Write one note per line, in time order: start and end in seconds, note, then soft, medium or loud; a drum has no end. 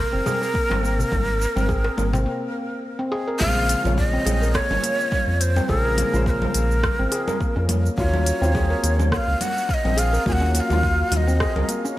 0.00 2.22 A#4 loud
0.13 0.21 F#1 medium
0.13 0.25 C4 medium
0.26 0.40 G#4 medium
0.26 low conga medium
0.26 darbuka dum medium
0.26 shaker medium
0.42 0.54 A#4 medium
0.42 shaker soft
0.54 0.69 A#3 medium
0.54 kick loud
0.54 shaker soft
0.70 1.04 G#1 medium
0.70 0.82 C4 medium
0.70 darbuka tek medium
0.70 low conga medium
0.83 0.98 A#3 medium
0.83 shaker medium
0.99 darbuka dum medium
0.99 shaker soft
1.12 1.46 G#1 loud
1.12 kick medium
1.12 low conga medium
1.12 shaker soft
1.42 shaker medium
1.56 1.90 G#1 medium
1.56 1.68 C4 medium
1.56 low conga medium
1.56 shaker soft
1.69 1.83 G#4 medium
1.69 kick loud
1.69 shaker soft
1.84 1.96 A#4 medium
1.84 darbuka ka medium
1.84 darbuka tek soft
1.97 2.26 G#1 medium
1.97 2.12 A#3 medium
1.97 darbuka ka soft
1.97 low conga medium
1.97 shaker medium
2.13 2.26 C4 medium
2.13 darbuka tek medium
2.13 darbuka dum medium
2.13 shaker soft
2.26 2.41 A#3 medium
2.99 3.11 C4 medium
3.12 3.26 G#4 loud
3.28 3.39 A#4 medium
3.39 3.75 A#1 medium
3.39 3.81 C#3 medium
3.39 3.81 F3 medium
3.39 3.81 G#3 medium
3.39 3.56 A#3 medium
3.39 3.82 C4 loud
3.39 3.93 F5 loud
3.39 kick loud
3.39 low conga medium
3.39 shaker soft
3.69 open hi-hat medium
3.69 shaker medium
3.83 4.18 A#1 medium
3.83 5.65 C#3 medium
3.83 5.66 F3 medium
3.83 5.66 G#3 medium
3.83 5.67 C#5 medium
3.83 low conga medium
3.83 shaker soft
3.98 4.56 D#5 loud
3.98 kick loud
3.98 shaker soft
4.13 4.25 C4 medium
4.26 4.60 A#1 medium
4.26 4.40 G#4 loud
4.26 open hi-hat loud
4.26 low conga medium
4.26 shaker medium
4.42 4.54 A#4 medium
4.42 shaker soft
4.55 4.69 A#3 medium
4.55 5.42 C#5 loud
4.55 kick loud
4.55 cross-stick medium
4.55 shaker soft
4.70 4.78 G#1 medium
4.70 4.83 C#4 medium
4.70 low conga medium
4.83 4.98 A#3 medium
4.83 open hi-hat medium
4.83 shaker medium
5.00 shaker soft
5.12 kick loud
5.12 low conga medium
5.12 shaker soft
5.27 5.61 F2 loud
5.41 5.71 C5 loud
5.41 open hi-hat loud
5.41 shaker medium
5.56 5.68 C4 medium
5.56 low conga medium
5.56 shaker soft
5.68 6.04 A#1 loud
5.68 5.78 C#3 medium
5.68 5.79 F3 medium
5.68 5.79 G#3 medium
5.68 5.79 C4 medium
5.68 5.84 G#4 loud
5.68 5.80 A4 loud
5.68 kick loud
5.68 shaker soft
5.80 6.26 A#4 loud
5.85 5.97 A#4 medium
5.97 6.12 A#3 medium
5.97 open hi-hat medium
5.97 low conga medium
5.97 shaker medium
6.12 6.47 A#1 medium
6.12 7.94 C#3 medium
6.12 7.95 F3 medium
6.12 7.95 G#3 medium
6.12 6.26 C#4 medium
6.12 7.96 C5 loud
6.12 shaker soft
6.26 6.41 A#3 medium
6.26 6.31 C5 medium
6.26 kick loud
6.26 shaker soft
6.30 7.66 A#4 medium
6.42 low conga medium
6.54 6.89 A#1 medium
6.54 open hi-hat loud
6.54 shaker medium
6.71 shaker soft
6.83 kick loud
6.83 cross-stick medium
6.83 low conga medium
6.83 shaker soft
6.99 7.07 G#1 medium
6.99 7.11 C4 medium
7.12 7.26 G#4 medium
7.12 open hi-hat medium
7.12 shaker medium
7.28 7.39 A#4 medium
7.28 low conga medium
7.28 shaker medium
7.40 7.55 A#3 medium
7.40 kick loud
7.40 shaker soft
7.56 7.90 F2 loud
7.56 7.68 C#4 medium
7.69 7.84 A#3 medium
7.69 open hi-hat medium
7.69 low conga medium
7.69 shaker medium
7.86 shaker soft
7.98 8.32 D#2 loud
7.98 8.38 F#3 medium
7.98 8.38 A#3 medium
7.98 8.39 C#4 medium
7.98 8.39 F4 loud
7.98 9.08 C#5 loud
7.98 kick loud
7.98 shaker soft
8.14 low conga medium
8.26 open hi-hat medium
8.26 shaker medium
8.41 8.75 D#2 medium
8.41 10.23 F#3 medium
8.41 10.23 A#3 medium
8.41 8.53 C4 medium
8.41 10.25 F4 medium
8.41 shaker soft
8.55 8.69 G#4 loud
8.55 kick loud
8.55 low conga medium
8.55 shaker soft
8.70 8.82 A#4 medium
8.83 9.18 D#2 medium
8.83 8.98 A#3 medium
8.83 open hi-hat medium
8.83 shaker medium
8.99 9.11 C#4 medium
8.99 low conga medium
8.99 shaker soft
9.12 9.27 A#3 medium
9.12 9.17 F#5 loud
9.12 kick loud
9.12 cross-stick medium
9.12 shaker soft
9.16 9.43 F5 loud
9.28 9.36 C#2 medium
9.41 9.72 F#5 loud
9.41 open hi-hat medium
9.41 low conga medium
9.41 shaker medium
9.58 shaker medium
9.69 9.75 F5 medium
9.69 kick loud
9.69 shaker soft
9.74 10.00 D#5 loud
9.85 10.18 A#1 medium
9.85 9.96 C4 medium
9.85 low conga medium
9.97 10.12 G#4 loud
9.97 10.27 F5 loud
9.97 open hi-hat medium
9.97 shaker medium
10.13 10.25 A#4 medium
10.13 shaker soft
10.26 10.61 D#2 loud
10.26 10.35 F#3 medium
10.26 10.40 A#3 medium
10.26 10.36 A#3 medium
10.26 10.36 C#4 medium
10.26 10.37 F4 medium
10.26 10.34 G#5 loud
10.26 kick loud
10.26 low conga medium
10.26 shaker soft
10.33 10.56 F#5 loud
10.41 10.54 C#4 medium
10.54 10.70 A#3 medium
10.54 10.61 F#5 medium
10.54 open hi-hat medium
10.54 shaker medium
10.60 11.13 F5 loud
10.69 11.04 D#2 medium
10.69 11.98 F#3 medium
10.69 11.98 A#3 medium
10.69 low conga medium
10.69 shaker soft
10.73 11.98 F4 loud
10.83 kick loud
10.83 shaker soft
11.12 11.46 D#2 medium
11.12 11.18 F5 medium
11.12 open hi-hat medium
11.12 low conga medium
11.12 shaker medium
11.17 11.70 D#5 medium
11.28 11.39 C4 medium
11.28 shaker soft
11.40 11.55 G#4 loud
11.40 kick loud
11.40 cross-stick medium
11.40 shaker soft
11.56 11.64 C#2 medium
11.56 11.68 A#4 medium
11.56 low conga medium
11.69 11.83 A#3 medium
11.69 open hi-hat medium
11.69 shaker medium
11.85 11.97 C#4 medium
11.85 shaker soft